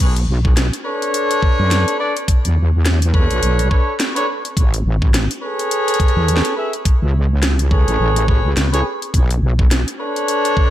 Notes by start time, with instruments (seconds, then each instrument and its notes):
0.00 wobble bass B1, kick, closed hi-hat, crash
0.16 closed hi-hat
0.28 wobble bass B1
0.45 kick
0.57 snare, closed hi-hat
0.73 closed hi-hat
0.85 horn section D4 A4 B4 C#5
1.02 closed hi-hat
1.14 closed hi-hat
1.31 closed hi-hat
1.43 kick
1.59 wobble bass F#2
1.71 snare, closed hi-hat
1.88 closed hi-hat
2.00 horn section D4 A4 B4 D5
2.17 closed hi-hat
2.28 kick, closed hi-hat
2.45 wobble bass E2, closed hi-hat
2.86 snare, closed hi-hat
3.02 closed hi-hat
3.14 horn section D4 A4 B4 C#5, kick
3.31 wobble bass B1, closed hi-hat
3.43 wobble bass B1, closed hi-hat
3.59 cross-stick, closed hi-hat
3.71 horn section D4 A4 B4 C#5, kick
4.00 snare, closed hi-hat
4.16 horn section D4 A4 B4 C#5, closed hi-hat
4.45 closed hi-hat
4.57 wobble bass A1, kick, closed hi-hat
4.74 closed hi-hat
4.85 wobble bass A1
5.02 kick
5.14 snare, closed hi-hat
5.31 closed hi-hat
5.43 horn section G#4 A4 B4 C#5
5.59 closed hi-hat
5.71 closed hi-hat
5.88 cross-stick, closed hi-hat
5.91 cross-stick, closed hi-hat
5.96 kick, cross-stick
6.00 cross-stick, closed hi-hat
6.06 cross-stick, closed hi-hat
6.09 cross-stick
6.16 wobble bass E2
6.28 closed hi-hat
6.37 snare
6.45 closed hi-hat
6.57 horn section G#4 A4 B4 E5
6.73 closed hi-hat
6.85 kick, closed hi-hat
7.02 wobble bass C#2
7.43 snare, closed hi-hat
7.59 closed hi-hat
7.71 horn section G#4 A4 B4 C#5, kick, cross-stick
7.88 wobble bass A1, closed hi-hat
8.00 wobble bass A1
8.16 cross-stick, closed hi-hat
8.28 horn section G#4 A4 B4 C#5, kick
8.45 wobble bass C#2
8.57 wobble bass C#2, snare, closed hi-hat
8.73 horn section G#4 A4 B4 C#5, closed hi-hat
9.02 closed hi-hat
9.14 wobble bass B1, kick, closed hi-hat
9.31 closed hi-hat
9.42 wobble bass B1
9.59 kick
9.71 snare, closed hi-hat
9.88 closed hi-hat
9.99 horn section D4 A4 B4 C#5
10.16 closed hi-hat
10.28 closed hi-hat
10.45 cross-stick, closed hi-hat
10.51 cross-stick
10.57 kick, cross-stick
10.65 cross-stick